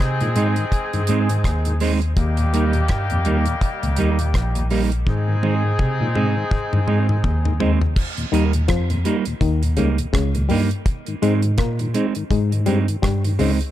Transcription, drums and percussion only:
0.00 kick, cross-stick
0.21 closed hi-hat
0.36 closed hi-hat
0.56 closed hi-hat
0.72 kick, closed hi-hat
0.93 closed hi-hat
1.07 closed hi-hat
1.29 closed hi-hat
1.44 kick, cross-stick, closed hi-hat
1.65 closed hi-hat
1.80 open hi-hat
2.02 closed hi-hat
2.17 kick, closed hi-hat
2.37 closed hi-hat
2.54 closed hi-hat
2.73 closed hi-hat
2.88 kick, cross-stick, closed hi-hat
3.10 closed hi-hat
3.25 closed hi-hat
3.46 closed hi-hat
3.61 kick, closed hi-hat
3.83 closed hi-hat
3.96 closed hi-hat
4.19 closed hi-hat
4.34 kick, cross-stick, closed hi-hat
4.55 closed hi-hat
4.70 open hi-hat
4.92 closed hi-hat
5.07 kick, high tom
5.43 high tom
5.79 kick, mid tom
6.15 mid tom
6.51 kick, mid tom
6.73 mid tom
6.88 mid tom
7.09 mid tom
7.24 kick, floor tom
7.45 floor tom
7.60 floor tom
7.82 floor tom
7.96 kick, crash
8.17 closed hi-hat
8.34 closed hi-hat
8.53 closed hi-hat
8.68 kick, cross-stick, closed hi-hat
8.90 closed hi-hat
9.05 closed hi-hat
9.25 closed hi-hat
9.41 kick, closed hi-hat
9.63 closed hi-hat
9.77 closed hi-hat
9.98 closed hi-hat
10.14 kick, cross-stick, closed hi-hat
10.35 closed hi-hat
10.50 open hi-hat
10.71 closed hi-hat
10.86 kick, closed hi-hat
11.06 closed hi-hat
11.23 closed hi-hat
11.42 closed hi-hat
11.58 kick, cross-stick, closed hi-hat
11.79 closed hi-hat
11.94 closed hi-hat
12.15 closed hi-hat
12.31 kick, closed hi-hat
12.52 closed hi-hat
12.66 closed hi-hat
12.88 closed hi-hat
13.03 kick, cross-stick, closed hi-hat
13.24 closed hi-hat
13.39 open hi-hat
13.61 closed hi-hat

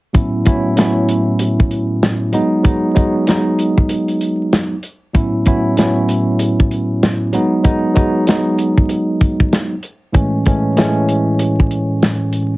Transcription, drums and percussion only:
0.14 kick, closed hi-hat
0.46 kick, closed hi-hat
0.77 snare, closed hi-hat
1.09 closed hi-hat
1.39 closed hi-hat
1.60 kick
1.71 closed hi-hat
2.03 snare, closed hi-hat
2.33 closed hi-hat
2.64 kick, closed hi-hat
2.96 kick, closed hi-hat
3.27 snare, closed hi-hat
3.59 closed hi-hat
3.78 kick
3.89 closed hi-hat
4.08 closed hi-hat
4.21 closed hi-hat
4.53 snare, closed hi-hat
4.83 closed hi-hat
5.14 kick, closed hi-hat
5.46 kick, closed hi-hat
5.77 snare, closed hi-hat
6.09 closed hi-hat
6.39 closed hi-hat
6.60 kick
6.71 closed hi-hat
7.03 snare, closed hi-hat
7.33 closed hi-hat
7.64 kick, closed hi-hat
7.96 kick, closed hi-hat
8.27 snare, closed hi-hat
8.59 closed hi-hat
8.78 kick
8.89 closed hi-hat
9.21 kick, closed hi-hat
9.40 kick
9.53 snare, closed hi-hat
9.83 closed hi-hat
10.14 kick, closed hi-hat
10.46 kick, closed hi-hat
10.77 snare, closed hi-hat
11.09 closed hi-hat
11.39 closed hi-hat
11.60 kick
11.71 closed hi-hat
12.03 snare, closed hi-hat
12.33 closed hi-hat

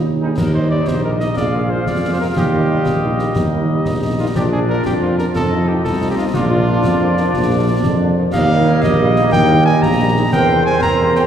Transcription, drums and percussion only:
0.38 concert bass drum, snare, crash
0.88 concert bass drum, snare
1.20 snare
1.37 concert bass drum, snare
1.87 concert bass drum, snare
2.36 concert bass drum, snare
2.86 concert bass drum, snare
3.19 snare
3.36 concert bass drum, snare
3.85 concert bass drum, snare
4.36 concert bass drum, snare, crash
4.86 concert bass drum, snare
5.19 snare
5.35 concert bass drum, snare
5.85 concert bass drum, snare
6.34 concert bass drum, snare
6.84 concert bass drum, snare
7.17 snare
7.34 concert bass drum, snare
7.84 concert bass drum, snare
8.34 concert bass drum, snare, crash
8.83 concert bass drum, snare
9.16 snare
9.33 concert bass drum, snare
9.83 concert bass drum, snare
10.33 concert bass drum, snare
10.82 concert bass drum, snare
11.16 snare

